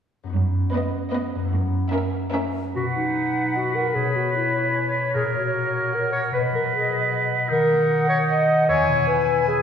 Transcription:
0.23 harp F#2 B3 D#4
0.29 harp F#4
0.34 cello section F#2
0.73 viola section B3, violin section B4 D#5
1.13 viola section B3, violin section B4 D#5
1.35 harp F#2
1.39 harp A#3
1.44 harp E4
1.48 cello section F#2, harp F#4
1.92 viola section C#4, violin section A#4 E5
2.33 viola section C#4, violin section A#4 E5
2.75 harp B2, clarinet F#4, oboe B4, flute section F#5
2.95 harp F#3, clarinet D#4
3.15 harp D#4
3.35 harp B4
3.55 clarinet F#4, harp D#5
3.75 harp F#4, clarinet A#4
3.94 harp B2, clarinet G#4, flute section C#5
4.15 harp B3, clarinet F#4
4.35 clarinet E4, harp G#4
4.54 harp C#5
4.74 harp G#5
4.94 harp C#5
5.14 harp A#2, clarinet G#4, oboe A#4
5.34 harp A#3, clarinet F#4
5.54 harp F#4
5.73 harp C#5
5.92 clarinet A#4, harp F#5
6.12 clarinet C#5, harp C#5
6.31 harp B2, oboe B4, clarinet B4, flute section D#5
6.52 harp F#3, clarinet A#4
6.72 harp F#4, clarinet G#4
6.91 harp D#5
7.12 harp F#5
7.31 harp B4
7.49 harp D#3, oboe D#4, clarinet A#4, flute section F#5
7.71 harp A#3
7.90 harp F#4
8.09 clarinet C#5, harp D#5
8.29 clarinet D#5, harp F#5
8.48 harp A#4
8.67 harp E2, oboe E4, clarinet C#5, flute section G#5
8.88 harp B2
9.07 harp E4, clarinet B4
9.27 harp B4
9.48 clarinet G#4, harp E5

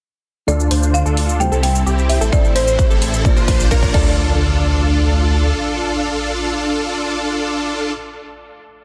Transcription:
0.47 detuned saw bass D2, felt piano D3 A3 D4 F4 D5, supersaw synth D4 F4 A4, synth pluck A4, marimba D5, riser, shaker
0.60 shaker
0.71 detuned saw bass D2, supersaw synth D4 F4 C5, synth pluck C5, open hi-hat
0.83 shaker
0.94 marimba F5, shaker
1.05 detuned saw bass D2, supersaw synth D4 F4 A4, synth pluck A4, shaker
1.17 open hi-hat
1.29 shaker
1.39 felt piano C3 G3 C4 E4 C5, marimba G5, shaker
1.52 detuned saw bass C2, supersaw synth C4 E4 A4, synth pluck A4, shaker
1.63 marimba G5, open hi-hat
1.75 shaker
1.86 detuned saw bass C2, supersaw synth C4 E4 G4, synth pluck G4, shaker
1.98 shaker
2.09 marimba E5, open hi-hat
2.21 detuned saw bass A1, supersaw synth C4 E4 A4, synth pluck A4, shaker
2.32 detuned saw bass A1, felt piano A2 A3 C4 E4 C5, supersaw synth C4 E4 A4, synth pluck A4, marimba D5, kick, shaker
2.45 shaker
2.55 detuned saw bass A1, supersaw synth C4 E4 C5, marimba C5, synth pluck C5, open hi-hat
2.68 shaker
2.79 kick, shaker
2.90 detuned saw bass A1, supersaw synth C4 E4 A4, synth pluck A4, shaker
3.02 open hi-hat
3.14 shaker
3.24 felt piano A#2 A#3 D4 F4 D5, kick, shaker
3.36 detuned saw bass A#1, supersaw synth D4 F4 C5, synth pluck C5, shaker
3.48 kick, open hi-hat
3.60 shaker
3.71 detuned saw bass A#1, supersaw synth D4 F4 A#4, synth pluck A#4, kick, shaker
3.83 kick, shaker
3.92 detuned saw bass D2, felt piano A3 D4 F4 D5, supersaw synth D4 F4 A4, synth pluck A4, marimba D5, kick, crash, impact

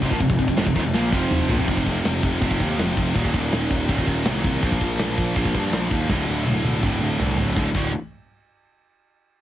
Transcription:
0.01 picked electric bass F1, distorted electric guitar F2 C3, kick, crash
0.11 picked electric bass A#1, distorted electric guitar A#2 F3, kick
0.20 picked electric bass F1, distorted electric guitar F2 C3, kick, crash
0.30 picked electric bass F1, distorted electric guitar F2 C3, kick
0.39 picked electric bass F1, distorted electric guitar F2 C3, kick, crash
0.48 picked electric bass F1, distorted electric guitar F2 C3, kick
0.56 picked electric bass F1, distorted electric guitar F2 C3, snare, crash
0.66 picked electric bass F1, distorted electric guitar F2 C3, kick
0.75 picked electric bass D#1, distorted electric guitar D#2 A#2, kick, crash
0.85 picked electric bass F1, distorted electric guitar F2 C3
0.94 picked electric bass A#1, distorted electric guitar A#2 F3 A#3, snare
1.13 picked electric bass F1, distorted electric guitar F2 C3 F3, kick
1.31 mid tom
1.49 picked electric bass A#1, distorted electric guitar A#2 F3, floor tom
1.59 picked electric bass F1, distorted electric guitar F2 C3
1.68 picked electric bass F1, distorted electric guitar F2 C3 F3, kick, ride bell
1.77 distorted electric guitar F2 C3, kick
1.83 picked electric bass F1, distorted electric guitar F2 C3, kick
1.91 distorted electric guitar F2 C3
1.98 distorted electric guitar F2 C3
2.05 picked electric bass F1, distorted electric guitar F2 C3, snare, ride bell
2.14 distorted electric guitar F2 C3
2.22 picked electric bass F1, distorted electric guitar F2 C3, kick
2.30 distorted electric guitar F2 C3
2.38 picked electric bass F1, distorted electric guitar F2 C3, kick, ride bell
2.42 distorted electric guitar C3 F3
2.46 distorted electric guitar F2 C3
2.51 distorted electric guitar F2 C3, kick
2.60 picked electric bass D#2, distorted electric guitar F2 C3, kick
2.70 distorted electric guitar F2 C3
2.77 picked electric bass F1, distorted electric guitar F2 C3, snare, ride bell
2.84 distorted electric guitar F2 C3
2.92 distorted electric guitar F2 C3
2.97 picked electric bass F1, distorted electric guitar F2 C3, kick
3.08 distorted electric guitar F2 C3
3.15 picked electric bass D#1, distorted electric guitar D#2 A#2 D#3, kick, ride bell
3.24 distorted electric guitar D#2 A#2, kick
3.31 picked electric bass D#1, distorted electric guitar D#2 A#2, kick
3.39 distorted electric guitar D#2 A#2
3.47 distorted electric guitar D#2 A#2
3.52 picked electric bass D#1, distorted electric guitar D#2 A#2, snare, ride bell
3.63 distorted electric guitar D#2 A#2
3.70 picked electric bass D#1, distorted electric guitar D#2 A#2, kick
3.77 distorted electric guitar D#2 A#2
3.85 distorted electric guitar D#2 A#2, kick, ride bell
3.89 picked electric bass D#1, distorted electric guitar D#2 A#2 D#3
3.98 distorted electric guitar D#2 A#2, kick
4.08 picked electric bass D#1, distorted electric guitar D#2 A#2, kick
4.15 distorted electric guitar D#2 A#2
4.23 distorted electric guitar D#2 A#2, snare, ride bell
4.27 picked electric bass C2
4.31 distorted electric guitar D#2 A#2
4.39 distorted electric guitar D#2 A#2
4.44 picked electric bass C2, distorted electric guitar A#2, kick
4.48 distorted electric guitar D#2
4.55 distorted electric guitar D#2 A#2
4.62 picked electric bass A#1, distorted electric guitar A#2 F3 A#3, kick, ride bell
4.71 distorted electric guitar A#2 F3, kick
4.79 picked electric bass A#1, distorted electric guitar A#2 F3, kick
4.86 distorted electric guitar A#2 F3
4.93 distorted electric guitar A#2 F3
4.99 picked electric bass A#1, distorted electric guitar A#2 F3, snare, ride bell
5.10 distorted electric guitar A#2 F3
5.16 picked electric bass A#1, distorted electric guitar A#2 F3, kick
5.25 distorted electric guitar A#2 F3
5.33 picked electric bass A#1, distorted electric guitar A#2 F3, kick, ride bell
5.38 distorted electric guitar A#2 F3 A#3
5.45 distorted electric guitar A#2 F3, kick
5.55 picked electric bass G2, distorted electric guitar A#2 F3, kick
5.64 distorted electric guitar A#2 F3
5.71 picked electric bass A#1, distorted electric guitar A#2 F3, snare, ride bell
5.79 distorted electric guitar A#2 F3
5.87 picked electric bass D#2, distorted electric guitar A#2 F3, kick
5.95 distorted electric guitar A#2 F3
6.03 distorted electric guitar A#2 F3
6.10 picked electric bass D1, distorted electric guitar D2 A2 D3, kick, snare
6.17 distorted electric guitar D2 A2
6.25 distorted electric guitar D2 A2
6.29 picked electric bass D1
6.33 distorted electric guitar D2 A2
6.40 distorted electric guitar D2 A2
6.46 picked electric bass D1, distorted electric guitar D2 A2, high tom
6.55 distorted electric guitar D2 A2
6.63 picked electric bass D1, distorted electric guitar D2 A2, high tom
6.69 distorted electric guitar D2 A2
6.79 distorted electric guitar D2 A2
6.83 picked electric bass D1, distorted electric guitar D2 A2 D3, kick, mid tom
6.94 distorted electric guitar D2 A2
7.01 picked electric bass D1, distorted electric guitar D2 A2
7.10 distorted electric guitar D2 A2
7.17 picked electric bass C2, distorted electric guitar D2 A2, floor tom
7.24 distorted electric guitar D2 A2
7.33 distorted electric guitar D2 A2
7.38 picked electric bass D1, distorted electric guitar D2 A2, floor tom
7.47 distorted electric guitar D2 A2
7.56 picked electric bass D1, distorted electric guitar D2 A2 D3, kick, snare
7.74 picked electric bass D1, distorted electric guitar D2 A2 D3, kick, crash

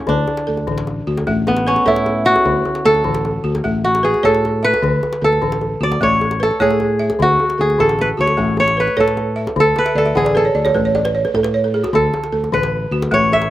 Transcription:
Already playing: kora C#4 E4
0.07 fingered electric bass D2, balafon D3, kora D4, djembe bass
0.27 djembe tone
0.37 djembe slap
0.47 fingered electric bass D2, balafon A4
0.57 djembe tone
0.67 fingered electric bass A1, balafon D3, djembe bass
0.78 djembe slap
0.87 djembe tone
1.07 fingered electric bass D2, balafon F#4
1.17 djembe slap, djembe tone
1.27 fingered electric bass A1, balafon A3 E5, djembe bass
1.47 kora B3, djembe slap, djembe tone
1.57 djembe slap
1.67 kora C#4, balafon B4
1.76 djembe tone
1.86 fingered electric bass A2, kora E4, balafon A4 C#5, djembe bass
1.96 djembe slap
2.06 djembe tone
2.25 kora F#4, balafon E5
2.36 djembe slap, djembe tone
2.45 fingered electric bass D2, balafon D3, djembe bass
2.65 djembe tone
2.75 djembe slap
2.85 fingered electric bass D2, balafon A4, kora A4
2.95 djembe tone
3.04 fingered electric bass A1, balafon D3, djembe bass
3.15 djembe slap
3.25 djembe tone
3.44 fingered electric bass D2, balafon F#4, djembe slap
3.55 djembe slap, djembe tone
3.64 fingered electric bass A1, balafon A3 E5, djembe bass
3.84 kora F#4, djembe slap
3.95 djembe slap
4.03 kora G#4, balafon B4
4.14 djembe tone
4.23 fingered electric bass A2, balafon A4 C#5, kora A4, djembe bass
4.35 djembe slap
4.45 djembe tone
4.63 kora B4, balafon E5
4.74 djembe slap, djembe tone
4.82 fingered electric bass D2, balafon D3, djembe bass
5.03 djembe tone
5.13 djembe slap
5.22 fingered electric bass D2, balafon A4, kora A4
5.33 djembe tone
5.41 fingered electric bass A1, balafon D3, djembe bass
5.52 djembe slap
5.61 djembe tone
5.80 fingered electric bass D2, balafon F#4, kora D5
5.92 djembe slap, djembe tone
6.00 fingered electric bass A1, balafon A3 E5, kora C#5, djembe slap, djembe bass
6.11 djembe slap
6.21 djembe tone
6.31 djembe slap
6.40 kora A4, balafon B4
6.51 djembe tone
6.60 fingered electric bass A2, balafon A3 C#5, kora G#4, djembe bass
6.71 djembe slap
6.80 djembe slap, djembe tone
6.99 balafon E5
7.10 djembe slap, djembe tone
7.19 fingered electric bass D2, balafon D3, kora F#4, djembe bass
7.40 djembe tone
7.50 djembe slap
7.58 fingered electric bass D2, kora G#4, balafon A4
7.70 djembe tone
7.78 fingered electric bass A1, balafon D3, kora A4, djembe bass
7.89 djembe slap
7.99 kora B4, djembe tone
8.17 fingered electric bass D2, balafon F#4, kora C#5, djembe slap
8.27 djembe slap, djembe tone
8.37 fingered electric bass A1, balafon A3 E5, djembe bass
8.57 kora C#5, djembe slap, djembe tone
8.68 djembe slap
8.77 balafon B4, kora B4
8.87 djembe tone
8.97 fingered electric bass A2, balafon A4 C#5, kora A4, djembe bass
9.08 djembe slap
9.17 djembe tone
9.36 balafon E5
9.47 djembe slap, djembe tone
9.56 fingered electric bass D2, balafon D3, djembe bass
9.60 kora A4
9.76 kora B4, djembe tone
9.85 balafon E5, djembe slap
9.95 fingered electric bass D2, kora A4, balafon D5
10.05 balafon E5, djembe tone
10.15 fingered electric bass A1, balafon D3 F#5, kora G#4, djembe bass
10.25 balafon D5, djembe slap
10.35 kora A4, balafon B4, djembe tone
10.45 balafon C#5
10.55 fingered electric bass D2, balafon D5, djembe slap
10.65 balafon C#5, djembe slap, djembe tone
10.74 fingered electric bass A1, balafon A3 B4, djembe bass
10.85 balafon C#5
10.95 balafon D5, djembe slap, djembe tone
11.05 balafon B4, djembe slap
11.15 balafon C#5
11.25 balafon B4, djembe tone
11.34 fingered electric bass A2, balafon A4, djembe bass
11.43 balafon B4, djembe slap
11.54 balafon C#5
11.64 balafon A4
11.74 balafon G#4
11.84 balafon F#4, djembe slap, djembe tone
11.93 fingered electric bass D2, balafon D3, kora A4, djembe bass
12.14 djembe tone
12.24 djembe slap
12.32 fingered electric bass D2, balafon A4
12.44 djembe tone
12.52 fingered electric bass A1, balafon D3, kora B4, djembe bass
12.63 djembe slap
12.91 fingered electric bass D2, balafon F#4, djembe slap
13.02 djembe slap, djembe tone
13.11 fingered electric bass A1, balafon A3 E5, kora C#5, djembe bass
13.32 kora E5, djembe slap, djembe tone
13.42 djembe slap

